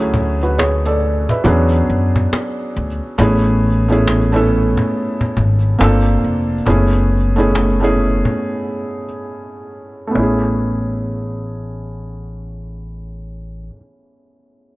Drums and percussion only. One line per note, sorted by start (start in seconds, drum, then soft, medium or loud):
0.14 cajon bass medium
0.43 cajon slap soft
0.59 cajon slap loud
1.00 cajon slap soft
1.29 cajon bass medium
1.45 cajon bass medium
1.87 cajon slap soft
2.16 cajon bass medium
2.33 cajon slap loud
2.76 cajon slap soft
3.04 cajon slap soft
3.19 cajon bass loud
3.63 cajon slap soft
3.91 cajon slap soft
4.08 cajon slap loud
4.49 cajon slap soft
4.77 cajon bass medium
4.93 cajon slap soft
5.21 cajon bass medium
5.37 cajon bass medium
5.81 cajon slap loud
6.24 cajon slap soft
6.52 cajon slap soft
6.67 cajon bass loud
7.11 cajon slap soft
7.55 cajon slap loud
7.97 cajon slap soft
8.25 cajon bass medium
10.15 cajon slap medium